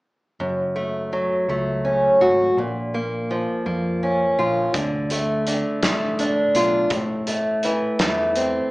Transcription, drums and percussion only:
4.74 kick, closed hi-hat
5.10 closed hi-hat
5.47 closed hi-hat
5.83 snare, closed hi-hat
6.19 closed hi-hat
6.55 closed hi-hat
6.90 kick, closed hi-hat
7.27 closed hi-hat
7.63 closed hi-hat
7.99 snare, closed hi-hat
8.36 closed hi-hat

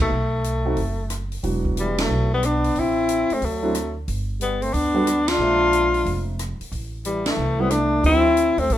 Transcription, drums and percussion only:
0.44 closed hi-hat
0.77 kick, open hi-hat
1.10 cross-stick, closed hi-hat
1.32 open hi-hat
1.43 kick, open hi-hat
1.65 kick
1.77 closed hi-hat
1.98 snare, ride
2.43 cross-stick, closed hi-hat
2.64 open hi-hat
2.76 kick, open hi-hat
3.09 closed hi-hat
3.30 open hi-hat
3.42 kick, open hi-hat
3.75 cross-stick, closed hi-hat
4.08 kick, open hi-hat
4.41 closed hi-hat
4.62 open hi-hat
4.74 kick, open hi-hat
5.07 cross-stick, closed hi-hat
5.28 snare, ride
5.73 closed hi-hat
5.94 open hi-hat
6.06 kick, open hi-hat
6.39 cross-stick, closed hi-hat
6.61 open hi-hat
6.72 kick, open hi-hat
7.05 closed hi-hat
7.26 snare, ride
7.70 cross-stick, closed hi-hat
8.04 kick, open hi-hat
8.37 closed hi-hat
8.58 open hi-hat
8.70 kick, open hi-hat

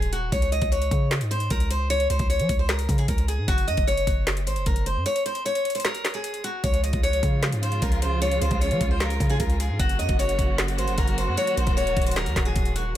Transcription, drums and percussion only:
0.02 closed hi-hat
0.13 closed hi-hat
0.32 kick, closed hi-hat
0.42 closed hi-hat
0.52 closed hi-hat
0.62 kick, closed hi-hat
0.72 closed hi-hat
0.82 closed hi-hat
0.91 kick, closed hi-hat
1.11 snare, clap, closed hi-hat
1.21 closed hi-hat
1.31 closed hi-hat
1.40 closed hi-hat
1.50 kick, closed hi-hat
1.60 closed hi-hat
1.71 closed hi-hat
1.90 closed hi-hat
2.00 closed hi-hat
2.10 closed hi-hat
2.19 kick, closed hi-hat
2.30 closed hi-hat
2.39 closed hi-hat
2.49 kick, closed hi-hat
2.69 snare, clap, closed hi-hat
2.79 closed hi-hat
2.89 kick, closed hi-hat
2.98 closed hi-hat
3.08 kick, closed hi-hat
3.18 closed hi-hat
3.28 closed hi-hat
3.48 kick, closed hi-hat
3.58 closed hi-hat
3.68 closed hi-hat
3.77 kick, closed hi-hat
3.88 closed hi-hat
3.97 closed hi-hat
4.07 kick, closed hi-hat
4.27 snare, clap, closed hi-hat
4.37 closed hi-hat
4.47 closed hi-hat
4.56 closed hi-hat
4.66 kick, closed hi-hat
4.76 closed hi-hat
4.86 closed hi-hat
5.06 closed hi-hat
5.16 closed hi-hat
5.26 closed hi-hat
5.35 closed hi-hat
5.46 closed hi-hat
5.55 closed hi-hat
5.65 closed hi-hat, open hi-hat
5.70 closed hi-hat
5.75 closed hi-hat
5.80 closed hi-hat
5.85 snare, clap, closed hi-hat
5.95 closed hi-hat
6.05 snare, clap, closed hi-hat
6.14 closed hi-hat
6.24 closed hi-hat
6.34 closed hi-hat
6.44 closed hi-hat
6.64 kick, closed hi-hat
6.74 closed hi-hat
6.84 closed hi-hat
6.93 kick, closed hi-hat
7.04 closed hi-hat
7.13 closed hi-hat
7.23 kick, closed hi-hat
7.43 snare, clap, closed hi-hat
7.53 closed hi-hat
7.63 closed hi-hat
7.72 closed hi-hat
7.82 kick, closed hi-hat
7.92 closed hi-hat
8.02 closed hi-hat
8.22 closed hi-hat
8.32 closed hi-hat
8.42 closed hi-hat
8.51 kick, closed hi-hat
8.62 closed hi-hat
8.71 closed hi-hat
8.81 kick, closed hi-hat
9.00 snare, clap, closed hi-hat
9.10 closed hi-hat
9.20 kick, closed hi-hat
9.30 closed hi-hat
9.40 kick, closed hi-hat
9.50 closed hi-hat
9.60 closed hi-hat
9.80 kick, closed hi-hat
9.89 closed hi-hat
10.00 closed hi-hat
10.09 kick, closed hi-hat
10.20 closed hi-hat
10.29 closed hi-hat
10.39 kick, closed hi-hat
10.58 snare, clap, closed hi-hat
10.68 closed hi-hat
10.79 closed hi-hat
10.88 closed hi-hat
10.98 kick, closed hi-hat
11.08 closed hi-hat
11.18 closed hi-hat
11.37 closed hi-hat
11.47 closed hi-hat
11.57 closed hi-hat
11.67 kick, closed hi-hat
11.78 closed hi-hat
11.87 closed hi-hat
11.97 kick, closed hi-hat, open hi-hat
12.02 closed hi-hat
12.07 closed hi-hat
12.11 closed hi-hat
12.16 snare, clap, closed hi-hat
12.26 closed hi-hat
12.36 kick, snare, clap, closed hi-hat
12.45 closed hi-hat
12.56 kick, closed hi-hat
12.65 closed hi-hat
12.76 closed hi-hat

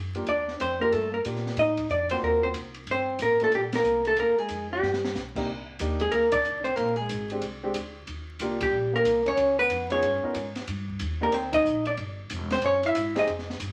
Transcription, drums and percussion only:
0.15 ride
0.27 kick, ride
0.48 snare
0.60 kick, hi-hat pedal, ride
0.92 kick, ride
1.25 kick, hi-hat pedal, ride
1.36 snare
1.46 snare
1.57 kick, ride
1.77 kick, ride
1.89 kick, hi-hat pedal
2.09 ride
2.22 kick
2.54 kick, hi-hat pedal, ride
2.74 ride
2.87 kick, ride
3.19 kick, hi-hat pedal, ride
3.40 ride
3.52 kick, ride
3.72 snare, ride
3.84 hi-hat pedal
4.05 ride
4.16 kick, ride
4.49 kick, hi-hat pedal, ride
4.83 snare
4.93 snare
5.04 snare
5.15 snare, hi-hat pedal
5.35 kick, crash
5.47 kick
5.79 kick, hi-hat pedal, ride
6.00 ride
6.12 kick, ride
6.32 kick, ride
6.44 hi-hat pedal
6.65 ride
6.77 kick, ride
7.09 kick, hi-hat pedal, ride
7.30 ride
7.42 kick, ride
7.74 kick, hi-hat pedal, ride
8.07 kick, ride
8.39 kick, hi-hat pedal, ride
8.61 kick, ride
9.05 kick, hi-hat pedal, ride
9.26 ride
9.37 kick, ride
9.70 kick, hi-hat pedal, ride
9.90 ride
10.02 kick, ride
10.34 kick, hi-hat pedal, ride
10.55 snare, ride
10.67 kick, ride
10.88 kick
10.99 kick, hi-hat pedal, ride
11.32 kick, ride
11.53 kick, ride
11.65 hi-hat pedal
11.85 ride
11.97 kick, ride
12.30 kick, hi-hat pedal, ride
12.50 snare, ride
12.62 kick, ride
12.83 ride
12.95 kick, hi-hat pedal, ride
13.16 snare, ride
13.27 kick, ride
13.39 snare
13.50 snare
13.60 kick, hi-hat pedal, ride

